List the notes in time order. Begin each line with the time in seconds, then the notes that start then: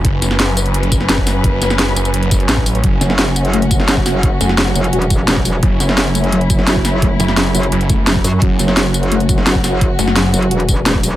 Already playing: F#3 C#4
0.05 F#1 B4, kick, closed hi-hat
0.22 F#1, snare, closed hi-hat, tambourine
0.31 snare
0.39 snare, closed hi-hat
0.57 closed hi-hat, tambourine
0.66 closed hi-hat
0.74 closed hi-hat
0.83 closed hi-hat
0.92 kick, closed hi-hat, tambourine
1.01 snare
1.09 snare, closed hi-hat
1.18 kick
1.27 snare, open hi-hat, tambourine
1.44 kick, closed hi-hat
1.62 F#1, snare, closed hi-hat, tambourine
1.70 snare, tambourine
1.79 snare, closed hi-hat
1.96 F#1, closed hi-hat, tambourine
2.05 closed hi-hat, tambourine
2.14 F#1, closed hi-hat
2.23 closed hi-hat
2.31 kick, closed hi-hat, tambourine
2.40 closed hi-hat
2.49 A1, snare, closed hi-hat
2.57 kick
2.66 open hi-hat, tambourine
2.75 closed hi-hat
2.84 F#1 F#3 F#4, kick, closed hi-hat
3.01 F#1 F#3, snare, closed hi-hat, tambourine
3.10 snare
3.19 F#4, snare, closed hi-hat
3.36 closed hi-hat, tambourine
3.45 closed hi-hat
3.53 A3, closed hi-hat
3.62 closed hi-hat
3.71 F#3, kick, closed hi-hat, tambourine
3.80 snare
3.88 F#3, snare, closed hi-hat
3.97 kick
4.06 F#4, snare, open hi-hat, tambourine
4.23 kick, closed hi-hat
4.41 F#1 A3, closed hi-hat, tambourine
4.49 snare
4.58 F#3, snare, closed hi-hat
4.76 F#1 F#3, closed hi-hat, tambourine
4.84 closed hi-hat
4.93 E1 F#4, closed hi-hat
5.02 closed hi-hat
5.10 kick, closed hi-hat, tambourine
5.28 A3, snare, closed hi-hat
5.37 kick
5.45 F#3, open hi-hat, tambourine
5.63 F#1 F#3 E4, kick, closed hi-hat
5.80 F#1 F#4, snare, closed hi-hat, tambourine
5.89 snare
5.98 snare, closed hi-hat
6.15 A3, closed hi-hat, tambourine
6.24 closed hi-hat
6.32 F#3, closed hi-hat
6.41 closed hi-hat
6.50 F#3, kick, closed hi-hat, tambourine
6.59 snare
6.67 F#4, snare, closed hi-hat
6.76 kick
6.85 snare, open hi-hat, tambourine
7.02 A3, kick, closed hi-hat
7.20 F#1 F#3, closed hi-hat, tambourine
7.28 snare
7.37 F#3, snare, closed hi-hat
7.55 F#1 F#4, closed hi-hat, tambourine
7.63 closed hi-hat
7.72 F#1, closed hi-hat
7.81 closed hi-hat
7.89 A3, kick, closed hi-hat, tambourine
8.07 F#3, snare, closed hi-hat
8.16 kick
8.24 F#2 F#3, open hi-hat, tambourine
8.42 F#1 F#3 F#4, kick, closed hi-hat
8.59 F#1 F#3, snare, closed hi-hat, tambourine
8.68 snare
8.77 F#4, snare, closed hi-hat
8.94 closed hi-hat, tambourine
9.03 closed hi-hat
9.12 A3, closed hi-hat
9.20 closed hi-hat
9.29 F#3, kick, closed hi-hat, tambourine
9.38 snare
9.46 F#3, snare, closed hi-hat
9.55 kick
9.64 F#4, snare, open hi-hat, tambourine
9.81 kick, closed hi-hat
9.99 F#1 A3, closed hi-hat, tambourine
10.08 snare
10.16 F#3, snare, closed hi-hat
10.34 F#1 F#3, closed hi-hat, tambourine
10.42 closed hi-hat
10.51 E1 F#4, closed hi-hat
10.60 closed hi-hat
10.69 kick, closed hi-hat, tambourine
10.86 A3, snare, closed hi-hat
10.95 kick
11.03 F#3, open hi-hat, tambourine